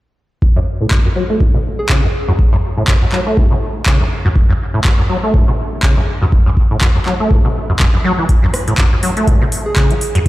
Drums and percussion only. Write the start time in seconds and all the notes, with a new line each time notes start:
0.42 kick
0.91 kick, clap
1.41 kick
1.89 kick, clap
2.39 kick
2.88 kick, clap
3.12 clap
3.37 kick
3.86 kick, clap
4.36 kick
4.84 kick, clap
5.34 kick
5.83 kick, clap
6.32 kick
6.57 kick
6.81 kick, clap
7.06 clap
7.31 kick
7.80 kick, clap
8.29 kick, closed hi-hat
8.54 cross-stick, open hi-hat
8.68 closed hi-hat
8.78 kick, clap, closed hi-hat
9.03 open hi-hat
9.17 closed hi-hat
9.27 kick, closed hi-hat
9.52 open hi-hat
9.76 kick, clap, closed hi-hat
9.91 closed hi-hat
10.01 open hi-hat
10.15 closed hi-hat